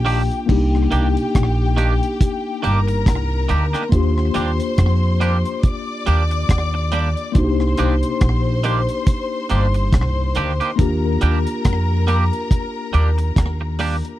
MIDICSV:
0, 0, Header, 1, 7, 480
1, 0, Start_track
1, 0, Tempo, 858369
1, 273, Time_signature, 4, 2, 24, 8
1, 7937, End_track
2, 0, Start_track
2, 0, Title_t, "String section"
2, 0, Program_c, 0, 48
2, 0, Note_on_c, 0, 67, 88
2, 0, Note_on_c, 0, 79, 103
2, 255, Note_off_c, 0, 79, 0
2, 256, Note_off_c, 0, 67, 0
2, 272, Note_on_c, 0, 79, 91
2, 273, Note_on_c, 0, 67, 85
2, 1450, Note_off_c, 0, 79, 0
2, 1451, Note_off_c, 0, 67, 0
2, 1468, Note_on_c, 0, 70, 86
2, 1469, Note_on_c, 0, 82, 91
2, 2176, Note_off_c, 0, 70, 0
2, 2177, Note_off_c, 0, 82, 0
2, 2196, Note_on_c, 0, 72, 79
2, 2196, Note_on_c, 0, 84, 92
2, 3136, Note_off_c, 0, 72, 0
2, 3136, Note_off_c, 0, 84, 0
2, 3150, Note_on_c, 0, 86, 95
2, 3151, Note_on_c, 0, 74, 88
2, 4093, Note_off_c, 0, 74, 0
2, 4093, Note_off_c, 0, 86, 0
2, 4110, Note_on_c, 0, 84, 93
2, 4111, Note_on_c, 0, 72, 82
2, 6010, Note_off_c, 0, 72, 0
2, 6010, Note_off_c, 0, 84, 0
2, 6032, Note_on_c, 0, 82, 88
2, 6033, Note_on_c, 0, 70, 81
2, 7930, Note_off_c, 0, 70, 0
2, 7930, Note_off_c, 0, 82, 0
2, 7937, End_track
3, 0, Start_track
3, 0, Title_t, "Tine electric piano"
3, 0, Program_c, 1, 4
3, 0, Control_c, 1, 64, 127
3, 0, Note_on_c, 1, 58, 81
3, 0, Note_on_c, 1, 62, 74
3, 0, Note_on_c, 1, 65, 70
3, 0, Note_on_c, 1, 67, 86
3, 243, Note_off_c, 1, 58, 0
3, 249, Note_off_c, 1, 62, 0
3, 255, Note_off_c, 1, 65, 0
3, 257, Note_on_c, 1, 58, 69
3, 261, Note_off_c, 1, 67, 0
3, 268, Note_on_c, 1, 62, 63
3, 279, Note_on_c, 1, 63, 65
3, 281, Control_c, 1, 64, 0
3, 290, Note_on_c, 1, 67, 76
3, 363, Control_c, 1, 64, 127
3, 2163, Note_off_c, 1, 58, 0
3, 2168, Note_off_c, 1, 62, 0
3, 2174, Note_off_c, 1, 63, 0
3, 2176, Note_on_c, 1, 58, 70
3, 2179, Note_off_c, 1, 67, 0
3, 2190, Note_on_c, 1, 62, 65
3, 2199, Note_on_c, 1, 65, 65
3, 2201, Control_c, 1, 64, 0
3, 2211, Note_on_c, 1, 67, 75
3, 2282, Control_c, 1, 64, 127
3, 4083, Note_off_c, 1, 58, 0
3, 4090, Note_off_c, 1, 62, 0
3, 4094, Note_off_c, 1, 65, 0
3, 4094, Note_on_c, 1, 58, 71
3, 4100, Note_off_c, 1, 67, 0
3, 4105, Note_on_c, 1, 62, 65
3, 4118, Note_on_c, 1, 63, 63
3, 4121, Control_c, 1, 64, 0
3, 4127, Note_on_c, 1, 66, 60
3, 4162, Note_off_c, 1, 66, 0
3, 4163, Note_on_c, 1, 67, 78
3, 4202, Control_c, 1, 64, 127
3, 6002, Note_off_c, 1, 58, 0
3, 6007, Note_off_c, 1, 62, 0
3, 6013, Note_off_c, 1, 63, 0
3, 6016, Note_on_c, 1, 58, 69
3, 6026, Note_on_c, 1, 62, 63
3, 6036, Note_off_c, 1, 67, 0
3, 6039, Note_on_c, 1, 65, 62
3, 6042, Control_c, 1, 64, 0
3, 6048, Note_on_c, 1, 67, 77
3, 6137, Control_c, 1, 64, 127
3, 7922, Note_off_c, 1, 58, 0
3, 7927, Note_off_c, 1, 62, 0
3, 7934, Note_off_c, 1, 65, 0
3, 7937, Note_off_c, 1, 67, 0
3, 7937, End_track
4, 0, Start_track
4, 0, Title_t, "Clean electric guitar"
4, 0, Program_c, 2, 27
4, 28, Note_on_c, 2, 51, 89
4, 32, Note_on_c, 2, 58, 89
4, 33, Note_on_c, 2, 62, 88
4, 36, Note_on_c, 2, 67, 92
4, 116, Note_off_c, 2, 51, 0
4, 119, Note_off_c, 2, 58, 0
4, 119, Note_off_c, 2, 62, 0
4, 121, Note_off_c, 2, 67, 0
4, 509, Note_on_c, 2, 51, 79
4, 512, Note_on_c, 2, 58, 82
4, 515, Note_on_c, 2, 62, 85
4, 517, Note_on_c, 2, 67, 94
4, 597, Note_off_c, 2, 51, 0
4, 599, Note_off_c, 2, 58, 0
4, 600, Note_off_c, 2, 62, 0
4, 601, Note_off_c, 2, 67, 0
4, 988, Note_on_c, 2, 51, 78
4, 992, Note_on_c, 2, 58, 86
4, 995, Note_on_c, 2, 62, 81
4, 997, Note_on_c, 2, 67, 91
4, 1076, Note_off_c, 2, 51, 0
4, 1079, Note_off_c, 2, 58, 0
4, 1080, Note_off_c, 2, 62, 0
4, 1081, Note_off_c, 2, 67, 0
4, 1468, Note_on_c, 2, 51, 82
4, 1472, Note_on_c, 2, 58, 82
4, 1475, Note_on_c, 2, 62, 84
4, 1478, Note_on_c, 2, 67, 88
4, 1557, Note_off_c, 2, 51, 0
4, 1559, Note_off_c, 2, 58, 0
4, 1560, Note_off_c, 2, 62, 0
4, 1562, Note_off_c, 2, 67, 0
4, 1949, Note_on_c, 2, 51, 81
4, 1953, Note_on_c, 2, 58, 76
4, 1955, Note_on_c, 2, 62, 78
4, 1958, Note_on_c, 2, 67, 81
4, 2037, Note_off_c, 2, 51, 0
4, 2039, Note_off_c, 2, 58, 0
4, 2040, Note_off_c, 2, 62, 0
4, 2042, Note_off_c, 2, 67, 0
4, 2087, Note_on_c, 2, 67, 63
4, 2091, Note_on_c, 2, 62, 57
4, 2093, Note_on_c, 2, 58, 51
4, 2096, Note_on_c, 2, 51, 55
4, 2139, Note_off_c, 2, 67, 0
4, 2141, Note_off_c, 2, 62, 0
4, 2142, Note_off_c, 2, 58, 0
4, 2144, Note_off_c, 2, 51, 0
4, 2428, Note_on_c, 2, 55, 82
4, 2432, Note_on_c, 2, 58, 74
4, 2435, Note_on_c, 2, 62, 83
4, 2437, Note_on_c, 2, 67, 86
4, 2517, Note_off_c, 2, 55, 0
4, 2519, Note_off_c, 2, 58, 0
4, 2520, Note_off_c, 2, 62, 0
4, 2521, Note_off_c, 2, 67, 0
4, 2910, Note_on_c, 2, 55, 82
4, 2913, Note_on_c, 2, 58, 86
4, 2915, Note_on_c, 2, 62, 83
4, 2918, Note_on_c, 2, 67, 87
4, 2998, Note_off_c, 2, 55, 0
4, 2999, Note_off_c, 2, 58, 0
4, 3000, Note_off_c, 2, 62, 0
4, 3002, Note_off_c, 2, 67, 0
4, 3390, Note_on_c, 2, 55, 85
4, 3394, Note_on_c, 2, 58, 81
4, 3396, Note_on_c, 2, 62, 89
4, 3399, Note_on_c, 2, 67, 96
4, 3478, Note_off_c, 2, 55, 0
4, 3480, Note_off_c, 2, 58, 0
4, 3481, Note_off_c, 2, 62, 0
4, 3482, Note_off_c, 2, 67, 0
4, 3869, Note_on_c, 2, 55, 76
4, 3873, Note_on_c, 2, 58, 82
4, 3875, Note_on_c, 2, 62, 81
4, 3878, Note_on_c, 2, 67, 85
4, 3957, Note_off_c, 2, 55, 0
4, 3959, Note_off_c, 2, 58, 0
4, 3961, Note_off_c, 2, 62, 0
4, 3962, Note_off_c, 2, 67, 0
4, 4351, Note_on_c, 2, 51, 82
4, 4353, Note_on_c, 2, 58, 76
4, 4357, Note_on_c, 2, 62, 90
4, 4359, Note_on_c, 2, 67, 88
4, 4439, Note_off_c, 2, 51, 0
4, 4440, Note_off_c, 2, 58, 0
4, 4442, Note_off_c, 2, 62, 0
4, 4442, Note_off_c, 2, 67, 0
4, 4829, Note_on_c, 2, 51, 91
4, 4833, Note_on_c, 2, 58, 85
4, 4836, Note_on_c, 2, 62, 92
4, 4838, Note_on_c, 2, 67, 100
4, 4918, Note_off_c, 2, 51, 0
4, 4920, Note_off_c, 2, 58, 0
4, 4921, Note_off_c, 2, 62, 0
4, 4922, Note_off_c, 2, 67, 0
4, 5310, Note_on_c, 2, 51, 68
4, 5315, Note_on_c, 2, 58, 76
4, 5317, Note_on_c, 2, 62, 73
4, 5319, Note_on_c, 2, 67, 76
4, 5398, Note_off_c, 2, 51, 0
4, 5400, Note_off_c, 2, 58, 0
4, 5402, Note_off_c, 2, 62, 0
4, 5403, Note_off_c, 2, 67, 0
4, 5792, Note_on_c, 2, 51, 72
4, 5795, Note_on_c, 2, 58, 80
4, 5797, Note_on_c, 2, 62, 89
4, 5800, Note_on_c, 2, 67, 91
4, 5879, Note_off_c, 2, 51, 0
4, 5881, Note_off_c, 2, 58, 0
4, 5881, Note_off_c, 2, 62, 0
4, 5883, Note_off_c, 2, 67, 0
4, 5929, Note_on_c, 2, 67, 68
4, 5932, Note_on_c, 2, 62, 58
4, 5934, Note_on_c, 2, 58, 62
4, 5937, Note_on_c, 2, 51, 57
4, 5980, Note_off_c, 2, 67, 0
4, 5982, Note_off_c, 2, 62, 0
4, 5983, Note_off_c, 2, 58, 0
4, 5985, Note_off_c, 2, 51, 0
4, 6270, Note_on_c, 2, 55, 78
4, 6273, Note_on_c, 2, 58, 81
4, 6276, Note_on_c, 2, 62, 89
4, 6277, Note_on_c, 2, 67, 100
4, 6358, Note_off_c, 2, 55, 0
4, 6360, Note_off_c, 2, 58, 0
4, 6361, Note_off_c, 2, 62, 0
4, 6362, Note_off_c, 2, 67, 0
4, 6751, Note_on_c, 2, 55, 75
4, 6754, Note_on_c, 2, 58, 82
4, 6757, Note_on_c, 2, 62, 81
4, 6760, Note_on_c, 2, 67, 94
4, 6838, Note_off_c, 2, 55, 0
4, 6840, Note_off_c, 2, 58, 0
4, 6841, Note_off_c, 2, 62, 0
4, 6843, Note_off_c, 2, 67, 0
4, 7230, Note_on_c, 2, 55, 74
4, 7234, Note_on_c, 2, 58, 83
4, 7237, Note_on_c, 2, 62, 84
4, 7239, Note_on_c, 2, 67, 83
4, 7318, Note_off_c, 2, 55, 0
4, 7320, Note_off_c, 2, 58, 0
4, 7322, Note_off_c, 2, 62, 0
4, 7323, Note_off_c, 2, 67, 0
4, 7712, Note_on_c, 2, 55, 79
4, 7715, Note_on_c, 2, 58, 81
4, 7719, Note_on_c, 2, 62, 89
4, 7720, Note_on_c, 2, 67, 89
4, 7799, Note_off_c, 2, 55, 0
4, 7800, Note_off_c, 2, 58, 0
4, 7802, Note_off_c, 2, 62, 0
4, 7803, Note_off_c, 2, 67, 0
4, 7937, End_track
5, 0, Start_track
5, 0, Title_t, "Upright bass"
5, 0, Program_c, 3, 32
5, 0, Note_on_c, 3, 34, 90
5, 149, Note_off_c, 3, 34, 0
5, 276, Note_on_c, 3, 36, 103
5, 493, Note_off_c, 3, 36, 0
5, 517, Note_on_c, 3, 36, 85
5, 640, Note_off_c, 3, 36, 0
5, 758, Note_on_c, 3, 34, 94
5, 1110, Note_off_c, 3, 34, 0
5, 1479, Note_on_c, 3, 31, 88
5, 1694, Note_off_c, 3, 31, 0
5, 1715, Note_on_c, 3, 36, 85
5, 1932, Note_off_c, 3, 36, 0
5, 1958, Note_on_c, 3, 38, 88
5, 2081, Note_off_c, 3, 38, 0
5, 2196, Note_on_c, 3, 39, 103
5, 2413, Note_off_c, 3, 39, 0
5, 2437, Note_on_c, 3, 39, 91
5, 2560, Note_off_c, 3, 39, 0
5, 2676, Note_on_c, 3, 41, 92
5, 3030, Note_off_c, 3, 41, 0
5, 3398, Note_on_c, 3, 39, 84
5, 3614, Note_off_c, 3, 39, 0
5, 3632, Note_on_c, 3, 39, 90
5, 3988, Note_off_c, 3, 39, 0
5, 4114, Note_on_c, 3, 36, 94
5, 4332, Note_off_c, 3, 36, 0
5, 4359, Note_on_c, 3, 36, 78
5, 4481, Note_off_c, 3, 36, 0
5, 4595, Note_on_c, 3, 34, 88
5, 4950, Note_off_c, 3, 34, 0
5, 5318, Note_on_c, 3, 31, 89
5, 5551, Note_on_c, 3, 36, 82
5, 5560, Note_off_c, 3, 31, 0
5, 5771, Note_off_c, 3, 36, 0
5, 5796, Note_on_c, 3, 38, 82
5, 5920, Note_off_c, 3, 38, 0
5, 6036, Note_on_c, 3, 39, 98
5, 6253, Note_off_c, 3, 39, 0
5, 6278, Note_on_c, 3, 39, 93
5, 6401, Note_off_c, 3, 39, 0
5, 6518, Note_on_c, 3, 41, 89
5, 6871, Note_off_c, 3, 41, 0
5, 7237, Note_on_c, 3, 39, 86
5, 7454, Note_off_c, 3, 39, 0
5, 7474, Note_on_c, 3, 39, 83
5, 7829, Note_off_c, 3, 39, 0
5, 7937, End_track
6, 0, Start_track
6, 0, Title_t, "Muted clean electric guitar strokes"
6, 1608, Note_on_c, 9, 29, 44
6, 1664, Note_off_c, 9, 29, 0
6, 3528, Note_on_c, 9, 29, 42
6, 3584, Note_off_c, 9, 29, 0
6, 3769, Note_on_c, 9, 29, 44
6, 3825, Note_off_c, 9, 29, 0
6, 5449, Note_on_c, 9, 29, 41
6, 5505, Note_off_c, 9, 29, 0
6, 7370, Note_on_c, 9, 29, 43
6, 7426, Note_off_c, 9, 29, 0
6, 7610, Note_on_c, 9, 29, 44
6, 7666, Note_off_c, 9, 29, 0
6, 7937, End_track
7, 0, Start_track
7, 0, Title_t, "Drums"
7, 33, Note_on_c, 9, 46, 75
7, 89, Note_off_c, 9, 46, 0
7, 175, Note_on_c, 9, 42, 45
7, 231, Note_off_c, 9, 42, 0
7, 274, Note_on_c, 9, 36, 115
7, 275, Note_on_c, 9, 49, 87
7, 330, Note_off_c, 9, 36, 0
7, 331, Note_off_c, 9, 49, 0
7, 419, Note_on_c, 9, 37, 58
7, 475, Note_off_c, 9, 37, 0
7, 512, Note_on_c, 9, 42, 81
7, 568, Note_off_c, 9, 42, 0
7, 654, Note_on_c, 9, 42, 56
7, 710, Note_off_c, 9, 42, 0
7, 755, Note_on_c, 9, 36, 99
7, 755, Note_on_c, 9, 42, 81
7, 759, Note_on_c, 9, 37, 99
7, 811, Note_off_c, 9, 36, 0
7, 811, Note_off_c, 9, 42, 0
7, 815, Note_off_c, 9, 37, 0
7, 994, Note_on_c, 9, 42, 76
7, 1050, Note_off_c, 9, 42, 0
7, 1135, Note_on_c, 9, 42, 46
7, 1191, Note_off_c, 9, 42, 0
7, 1234, Note_on_c, 9, 36, 110
7, 1235, Note_on_c, 9, 42, 88
7, 1290, Note_off_c, 9, 36, 0
7, 1291, Note_off_c, 9, 42, 0
7, 1476, Note_on_c, 9, 42, 61
7, 1532, Note_off_c, 9, 42, 0
7, 1612, Note_on_c, 9, 42, 51
7, 1668, Note_off_c, 9, 42, 0
7, 1713, Note_on_c, 9, 36, 110
7, 1715, Note_on_c, 9, 42, 88
7, 1722, Note_on_c, 9, 37, 93
7, 1769, Note_off_c, 9, 36, 0
7, 1771, Note_off_c, 9, 42, 0
7, 1778, Note_off_c, 9, 37, 0
7, 1952, Note_on_c, 9, 42, 72
7, 2008, Note_off_c, 9, 42, 0
7, 2092, Note_on_c, 9, 42, 42
7, 2096, Note_on_c, 9, 37, 62
7, 2148, Note_off_c, 9, 42, 0
7, 2152, Note_off_c, 9, 37, 0
7, 2193, Note_on_c, 9, 36, 117
7, 2193, Note_on_c, 9, 42, 78
7, 2248, Note_off_c, 9, 42, 0
7, 2249, Note_off_c, 9, 36, 0
7, 2336, Note_on_c, 9, 37, 61
7, 2392, Note_off_c, 9, 37, 0
7, 2429, Note_on_c, 9, 42, 86
7, 2485, Note_off_c, 9, 42, 0
7, 2572, Note_on_c, 9, 42, 59
7, 2628, Note_off_c, 9, 42, 0
7, 2672, Note_on_c, 9, 42, 79
7, 2674, Note_on_c, 9, 36, 100
7, 2676, Note_on_c, 9, 37, 104
7, 2728, Note_off_c, 9, 42, 0
7, 2730, Note_off_c, 9, 36, 0
7, 2732, Note_off_c, 9, 37, 0
7, 2914, Note_on_c, 9, 42, 77
7, 2970, Note_off_c, 9, 42, 0
7, 3050, Note_on_c, 9, 42, 49
7, 3106, Note_off_c, 9, 42, 0
7, 3150, Note_on_c, 9, 42, 88
7, 3151, Note_on_c, 9, 36, 110
7, 3206, Note_off_c, 9, 42, 0
7, 3207, Note_off_c, 9, 36, 0
7, 3392, Note_on_c, 9, 42, 65
7, 3448, Note_off_c, 9, 42, 0
7, 3530, Note_on_c, 9, 42, 49
7, 3585, Note_off_c, 9, 42, 0
7, 3630, Note_on_c, 9, 36, 113
7, 3632, Note_on_c, 9, 42, 90
7, 3639, Note_on_c, 9, 37, 101
7, 3685, Note_off_c, 9, 36, 0
7, 3688, Note_off_c, 9, 42, 0
7, 3694, Note_off_c, 9, 37, 0
7, 3868, Note_on_c, 9, 42, 73
7, 3924, Note_off_c, 9, 42, 0
7, 4010, Note_on_c, 9, 42, 38
7, 4066, Note_off_c, 9, 42, 0
7, 4110, Note_on_c, 9, 42, 75
7, 4111, Note_on_c, 9, 36, 109
7, 4166, Note_off_c, 9, 42, 0
7, 4167, Note_off_c, 9, 36, 0
7, 4251, Note_on_c, 9, 37, 62
7, 4307, Note_off_c, 9, 37, 0
7, 4348, Note_on_c, 9, 42, 80
7, 4404, Note_off_c, 9, 42, 0
7, 4489, Note_on_c, 9, 42, 55
7, 4545, Note_off_c, 9, 42, 0
7, 4590, Note_on_c, 9, 42, 79
7, 4592, Note_on_c, 9, 36, 102
7, 4594, Note_on_c, 9, 37, 105
7, 4646, Note_off_c, 9, 42, 0
7, 4648, Note_off_c, 9, 36, 0
7, 4650, Note_off_c, 9, 37, 0
7, 4830, Note_on_c, 9, 42, 77
7, 4886, Note_off_c, 9, 42, 0
7, 4969, Note_on_c, 9, 42, 51
7, 5025, Note_off_c, 9, 42, 0
7, 5070, Note_on_c, 9, 42, 96
7, 5071, Note_on_c, 9, 36, 114
7, 5126, Note_off_c, 9, 42, 0
7, 5127, Note_off_c, 9, 36, 0
7, 5310, Note_on_c, 9, 42, 70
7, 5366, Note_off_c, 9, 42, 0
7, 5448, Note_on_c, 9, 42, 53
7, 5504, Note_off_c, 9, 42, 0
7, 5550, Note_on_c, 9, 36, 110
7, 5551, Note_on_c, 9, 42, 87
7, 5558, Note_on_c, 9, 37, 103
7, 5606, Note_off_c, 9, 36, 0
7, 5607, Note_off_c, 9, 42, 0
7, 5614, Note_off_c, 9, 37, 0
7, 5787, Note_on_c, 9, 42, 73
7, 5842, Note_off_c, 9, 42, 0
7, 5932, Note_on_c, 9, 42, 43
7, 5988, Note_off_c, 9, 42, 0
7, 6033, Note_on_c, 9, 36, 111
7, 6033, Note_on_c, 9, 42, 76
7, 6089, Note_off_c, 9, 36, 0
7, 6089, Note_off_c, 9, 42, 0
7, 6270, Note_on_c, 9, 42, 85
7, 6326, Note_off_c, 9, 42, 0
7, 6412, Note_on_c, 9, 42, 59
7, 6468, Note_off_c, 9, 42, 0
7, 6513, Note_on_c, 9, 42, 78
7, 6515, Note_on_c, 9, 36, 99
7, 6517, Note_on_c, 9, 37, 104
7, 6569, Note_off_c, 9, 42, 0
7, 6571, Note_off_c, 9, 36, 0
7, 6573, Note_off_c, 9, 37, 0
7, 6755, Note_on_c, 9, 42, 78
7, 6811, Note_off_c, 9, 42, 0
7, 6895, Note_on_c, 9, 42, 49
7, 6951, Note_off_c, 9, 42, 0
7, 6995, Note_on_c, 9, 36, 106
7, 6997, Note_on_c, 9, 42, 89
7, 7050, Note_off_c, 9, 36, 0
7, 7053, Note_off_c, 9, 42, 0
7, 7235, Note_on_c, 9, 42, 70
7, 7291, Note_off_c, 9, 42, 0
7, 7372, Note_on_c, 9, 42, 53
7, 7428, Note_off_c, 9, 42, 0
7, 7473, Note_on_c, 9, 36, 110
7, 7477, Note_on_c, 9, 42, 88
7, 7483, Note_on_c, 9, 37, 101
7, 7529, Note_off_c, 9, 36, 0
7, 7533, Note_off_c, 9, 42, 0
7, 7539, Note_off_c, 9, 37, 0
7, 7711, Note_on_c, 9, 46, 68
7, 7767, Note_off_c, 9, 46, 0
7, 7856, Note_on_c, 9, 42, 42
7, 7912, Note_off_c, 9, 42, 0
7, 7937, End_track
0, 0, End_of_file